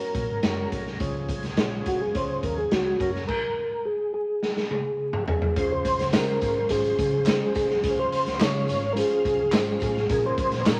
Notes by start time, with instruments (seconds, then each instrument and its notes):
Already playing: tonewheel organ F#3 C#4 A#4, reed electric piano C#4 F#4 A#4 C#5
0.01 closed hi-hat
0.15 fingered electric bass A#1, kick, closed hi-hat
0.29 fingered electric bass G#1
0.43 fingered electric bass F#1, reed electric piano C#4 F#4 G#4 C#5, snare, closed hi-hat
0.50 reed electric piano A#4
0.72 fingered electric bass C2, kick, closed hi-hat
0.87 snare
1.00 fingered electric bass C#2, reed electric piano C#3 C#4 F4 G#4 C#5, tonewheel organ F3 G#4, kick, closed hi-hat
1.29 kick, closed hi-hat
1.43 fingered electric bass C2, snare, closed hi-hat
1.57 fingered electric bass A#1, reed electric piano C#4 F4 G#4 C#5, snare, closed hi-hat
1.86 fingered electric bass C2, tonewheel organ F#4, kick, closed hi-hat
2.01 tonewheel organ G#4
2.15 fingered electric bass C#2, reed electric piano C#4 F4 G#4 C#5, tonewheel organ C5, kick, closed hi-hat
2.43 fingered electric bass D#2, tonewheel organ A#4, kick, closed hi-hat
2.58 tonewheel organ G#4
2.71 fingered electric bass C#2, reed electric piano C#4 F4 G#4 C#5, tonewheel organ F#4, snare, closed hi-hat
3.00 fingered electric bass F#1, tonewheel organ F#3 A#4, reed electric piano C#4 F#4 A#4 C#5, kick, closed hi-hat
3.15 snare
3.27 tonewheel organ A#4, kick, crash
3.85 tonewheel organ G#4
4.14 tonewheel organ G#4
4.43 snare
4.57 snare
4.71 high tom
5.13 mid tom
5.28 tonewheel organ G#4, floor tom
5.42 floor tom
5.56 fingered electric bass C#2, reed electric piano C#3 C#4 F4 G#4 C5, tonewheel organ F3 C#4 C5, kick, closed hi-hat
5.72 tonewheel organ C5
5.85 kick, closed hi-hat, tambourine
5.99 fingered electric bass C#2, snare, closed hi-hat
6.13 fingered electric bass C#3, reed electric piano C#4 F4 G#4 C5, tonewheel organ A#4, snare, clap, closed hi-hat, tambourine
6.41 fingered electric bass G#1, kick, closed hi-hat, tambourine
6.69 fingered electric bass G#1, reed electric piano C#4 D#4 G#4 C5, tonewheel organ G#4, kick, closed hi-hat, tambourine
6.77 reed electric piano F4
6.84 closed hi-hat
6.98 fingered electric bass C#3, kick, closed hi-hat, tambourine
7.26 reed electric piano C#4 F4 G#4 C5, snare, clap, closed hi-hat, tambourine
7.55 fingered electric bass C2, tonewheel organ G#4, kick, closed hi-hat, tambourine
7.70 snare
7.82 fingered electric bass C#2, reed electric piano C#3 C#4 F4 G#4 B4, tonewheel organ F5, kick, closed hi-hat, tambourine
7.90 reed electric piano C5
7.99 tonewheel organ C5
8.12 closed hi-hat
8.26 fingered electric bass C#2, snare, closed hi-hat
8.35 reed electric piano C#4, tonewheel organ C5
8.39 fingered electric bass C#3, reed electric piano F4 G#4 C#5, tonewheel organ C#5, snare, clap, closed hi-hat, tambourine
8.68 fingered electric bass G#1, closed hi-hat, tambourine
8.93 reed electric piano C#4 F4 G#4 C5, tonewheel organ A#4, tambourine
8.97 tonewheel organ G#4, closed hi-hat
9.25 fingered electric bass C2, kick, closed hi-hat, tambourine
9.40 fingered electric bass C#2
9.52 fingered electric bass G#1, reed electric piano C#4 E4 G#4 C5, snare, clap, closed hi-hat, tambourine
9.59 reed electric piano F4
9.80 fingered electric bass A1, tonewheel organ G#4, kick, closed hi-hat, tambourine
9.97 snare
10.09 fingered electric bass A#1, reed electric piano A#2 C#4 F4 G#4 A#4, tonewheel organ C#3 A#3 G#4, kick, closed hi-hat, tambourine
10.26 tonewheel organ C5
10.38 kick, closed hi-hat
10.51 fingered electric bass A#1, snare, closed hi-hat
10.61 tonewheel organ C5
10.65 fingered electric bass A#2, reed electric piano C4 F4 G#4 A#4, tonewheel organ A#4, snare, clap, closed hi-hat, tambourine
10.72 reed electric piano C#4